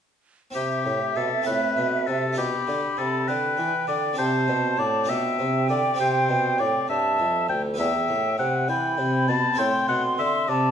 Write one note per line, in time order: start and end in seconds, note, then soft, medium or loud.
0.51 1.41 C4 soft
0.51 1.42 E4 soft
0.51 1.43 G4 soft
0.55 0.83 C3 soft
0.55 0.84 C3 medium
0.55 1.18 G4 medium
0.55 2.34 E5 medium
0.86 1.13 A2 soft
0.86 0.99 A2 soft
1.16 1.43 B2 soft
1.16 1.30 B2 medium
1.16 1.46 A4 medium
1.42 2.33 C4 soft
1.42 2.33 F4 soft
1.42 2.35 A4 soft
1.46 1.74 A2 soft
1.46 1.60 A2 soft
1.46 2.09 B4 medium
1.77 2.04 B2 soft
1.77 2.07 B2 soft
2.07 2.35 C3 soft
2.07 2.37 C3 soft
2.07 2.37 A4 medium
2.33 4.11 D4 soft
2.33 4.12 F4 soft
2.33 4.13 G4 soft
2.37 2.65 B2 soft
2.37 2.51 B2 medium
2.37 3.00 G4 medium
2.37 3.26 B5 medium
2.67 2.95 D3 soft
2.67 2.81 D3 soft
2.97 3.25 C3 soft
2.97 3.28 C3 medium
2.97 3.30 A4 medium
3.27 3.55 D3 soft
3.27 3.58 D3 soft
3.27 3.87 B4 medium
3.27 4.20 G5 medium
3.57 3.85 E3 soft
3.57 3.72 E3 soft
3.87 4.15 D3 soft
3.87 4.18 D3 medium
3.87 4.17 D5 medium
4.13 5.04 C4 soft
4.13 5.04 E4 soft
4.13 5.05 G4 soft
4.18 4.45 C3 soft
4.18 4.48 C3 medium
4.18 4.80 C5 medium
4.18 5.09 A5 medium
4.48 4.75 B2 soft
4.48 4.78 B2 soft
4.78 5.05 A2 soft
4.78 5.11 A2 medium
4.78 5.11 D5 medium
5.04 5.94 D4 soft
5.04 5.95 F4 soft
5.04 5.95 G4 soft
5.04 6.89 G5 medium
5.08 5.36 B2 soft
5.08 5.39 B2 soft
5.08 5.69 E5 medium
5.39 5.66 C3 soft
5.39 5.69 C3 medium
5.68 5.96 D3 soft
5.68 5.83 D3 medium
5.68 5.99 D5 medium
5.94 7.73 C4 soft
5.94 7.73 E4 soft
5.94 7.74 G4 soft
5.98 6.26 C3 soft
5.98 6.31 C3 medium
5.98 6.61 C5 medium
6.29 6.56 B2 soft
6.29 6.59 B2 medium
6.58 6.86 A2 soft
6.58 6.73 A2 soft
6.58 6.89 D5 medium
6.88 7.16 G2 soft
6.88 7.19 G2 soft
6.88 7.48 E5 medium
6.88 7.50 A5 medium
7.19 7.46 F2 soft
7.19 7.49 F2 medium
7.49 7.76 D2 soft
7.49 7.79 D2 medium
7.49 7.63 G5 medium
7.74 8.05 B3 soft
7.74 9.53 E4 soft
7.74 9.53 G4 soft
7.78 8.06 E2 soft
7.78 7.93 E2 medium
7.78 8.38 E5 medium
7.78 8.65 G5 medium
8.08 8.36 A2 medium
8.08 8.38 A2 medium
8.38 8.65 C3 soft
8.38 8.70 C3 medium
8.38 8.68 F#5 medium
8.68 8.95 E3 medium
8.68 9.00 E3 medium
8.68 9.30 G5 medium
8.68 9.60 B5 medium
8.98 9.25 C3 medium
8.98 9.28 C3 medium
9.28 9.55 B2 soft
9.28 9.42 B2 medium
9.28 9.60 A5 medium
9.53 10.71 C4 soft
9.53 10.71 E4 soft
9.53 10.71 A4 soft
9.58 9.85 A2 soft
9.58 9.72 A2 medium
9.58 9.88 G5 medium
9.58 10.49 C6 medium
9.88 10.16 B2 soft
9.88 10.18 B2 medium
9.88 10.02 F#5 medium
10.18 10.46 D3 soft
10.18 10.48 D3 medium
10.18 10.50 E5 medium
10.48 10.71 C3 soft
10.48 10.71 C3 medium
10.48 10.71 D5 medium
10.48 10.71 A5 medium